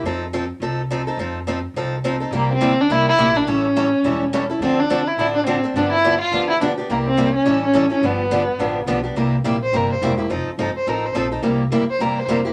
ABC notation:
X:1
M:4/4
L:1/8
Q:"Swing" 1/4=211
K:Cmix
V:1 name="Violin"
z8 | z8 | B, C2 D E E2 D | ^C6 z2 |
C D2 E E D C z | D E2 F2 E D z | B, C2 _D2 ^C2 C | =B,6 z2 |
z3 c B c z2 | z3 c B c z2 | z3 c B c z2 |]
V:2 name="Steel-string acoustic guitar"
[F,C_EA] z [F,CEA] z [F,CEA] z [F,CEA] [CEA] | [F,C_EA] z [F,CEA] z [F,CEA] z [F,CEA] [CEA] | [C,G,B,EG] z [C,G,B,EG] z [C,G,B,EG] z [C,G,B,EG] [B,EG] | [E,G,^CEA] z [E,G,CEA] z [E,G,CEA] z [E,G,CEA] [CEA] |
[D,F,CDA] z [D,F,CDA] z [D,F,CDA] z [D,F,CDA] [CDA] | [D,F,=B,DG] z [D,F,B,DG] z [D,F,B,DG] z [D,F,B,DG] [B,DG] | [C,G,B,EG] z [C,G,B,EG] z [E,G,^CEA] z [E,G,CEA] [CEA] | [D,F,=B,DG] z [D,F,B,DG] z [D,F,B,DG] z [D,F,B,DG] [B,DG] |
[C,G,B,EG] z [C,G,B,EG] z [C,G,B,EG] z [C,G,B,EG] [B,EG] | [F,C_EA] z [F,CEA] z [F,CEA] z [F,CEA] [CEA] | [C,G,B,EG] z [C,G,B,EG] z [C,G,B,EG] z [C,G,B,EG] [B,EG] |]
V:3 name="Steel-string acoustic guitar"
z8 | z8 | [C,G,B,EG] z [C,G,B,EG] z [C,G,B,EG] z [C,G,B,EG] z | [E,G,^CEA] z [E,G,CEA] z [E,G,CEA] z [E,G,CEA] z |
[D,F,CDA] z [D,F,CDA] z [D,F,CDA] z [D,F,CDA] z | [D,F,=B,DG] z [D,F,B,DG] z [D,F,B,DG] z [D,F,B,DG] z | [C,G,B,EG] z [C,G,B,EG] z [E,G,^CEA] z [E,G,CEA] z | [D,F,=B,DG] z [D,F,B,DG] z [D,F,B,DG] z [D,F,B,DG] z |
[C,G,B,EG] z [C,G,B,EG] z [C,G,B,EG] z [C,G,B,EG] z | [F,C_EA] z [F,CEA] z [F,CEA] z [F,CEA] z | [C,G,B,EG] z [C,G,B,EG] z [C,G,B,EG] z [C,G,B,EG] z |]
V:4 name="Upright bass" clef=bass
F,,4 C,,4 | F,,4 C,,4 | C,,2 z2 C,,2 B,,,2 | A,,,4 E,,,4 |
D,,4 A,,,4 | G,,,4 D,,4 | C,,4 A,,,4 | G,,,4 A,,,2 =B,,,2 |
C,,2 B,,,2 G,,,2 E,,,2 | F,,, z G,,, z A,,,2 B,,,2 | C,,2 D,, z E,, z F,,2 |]